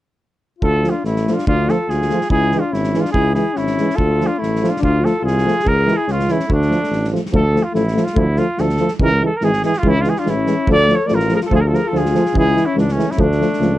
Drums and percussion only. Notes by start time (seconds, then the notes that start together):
0.62 kick
0.84 snare
1.05 snare
1.17 snare
1.28 snare
1.39 snare
1.47 kick
1.69 snare
1.90 snare
2.02 snare
2.10 snare
2.21 snare
2.30 kick
2.52 snare
2.74 snare
2.84 snare
2.94 snare
3.05 snare
3.14 kick
3.35 snare
3.56 snare
3.67 snare
3.78 snare
3.90 snare
3.98 kick
4.21 snare
4.43 snare
4.56 snare
4.64 snare
4.77 snare
4.83 kick
5.06 snare
5.28 snare
5.38 snare
5.48 snare
5.60 snare
5.67 kick
5.88 snare
6.08 snare
6.20 snare
6.28 snare
6.40 snare
6.50 kick
6.62 snare
6.72 snare
6.84 snare
6.93 snare
7.05 snare
7.16 snare
7.26 snare
7.34 kick
7.56 snare
7.75 snare
7.88 snare
7.97 snare
8.07 snare
8.16 kick
8.37 snare
8.58 snare
8.70 snare
8.77 snare
8.88 snare
8.99 kick
9.41 snare
9.53 snare
9.63 snare
9.73 snare
9.83 kick
10.04 snare
10.16 snare
10.27 snare
10.47 snare
10.67 kick
10.89 snare
11.09 snare
11.20 snare
11.29 snare
11.41 snare
11.51 kick
11.75 snare
11.95 snare
12.06 snare
12.15 snare
12.26 snare
12.35 kick
12.57 snare
12.78 snare
12.89 snare
13.00 snare
13.12 snare
13.19 kick
13.32 snare
13.42 snare
13.53 snare
13.62 snare